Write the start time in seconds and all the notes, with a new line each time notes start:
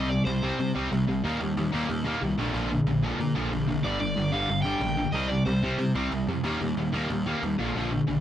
Already playing: C2
0.09 C3 G3 D5
0.25 C2 C3 G3 C5
0.42 C3 G3 C4
0.59 C3 G3
0.75 C2 C3 G3 C4
0.91 C2 C3 G3
1.08 C2 C3 G3
1.24 D#2 D#3 G3 A#3
1.40 D#2 D#3 G3
1.57 D#2 D#3 G3
1.72 D#2 D#3 G3 A#3
1.88 D#2 D#3 G3
2.04 D#3 G3 A#3
2.21 C2 D#3 G3
2.38 A#1 A#2 D3 F3
2.53 A#1 A#2 D3 F3
2.71 A#2 D3
2.86 A#1 A#2 D3
3.03 A#2 D3 F3
3.19 A#2 D3
3.35 A#1 A#2 D3 F3
3.52 A#1 A#2 D3
3.68 A#1 A#2 D3
3.84 G1 G2 D3 G3 D5
4.00 G1 G2 D3 D5
4.17 G1 G2 D3
4.32 G1 G2 D3 G3 F5
4.49 G1 G2 D3
4.62 G2 D3 G3 G5
4.81 A#1 G2 D3
4.98 G2 D3
5.12 C2 C3 G3 C4 D#5
5.28 C3 G3 D5
5.45 C2 C3 G3 C5
5.63 C3 G3 C4
5.78 C3 G3
5.95 C2 C3 G3 C4
6.11 C2 C3 G3
6.28 F2 C3 G3
6.44 D#2 D#3 G3 A#3
6.61 D#2 D#3 G3
6.77 D#2 D#3 G3
6.92 D#2 D#3 G3 A#3
7.10 D#2 D#3 G3
7.26 D#3 G3 A#3
7.43 D#2 D#3 G3
7.58 A#1 A#2 D3 F3
7.75 A#1 A#2 D3 F3
7.91 A#2 D3
8.07 A#1 A#2 D3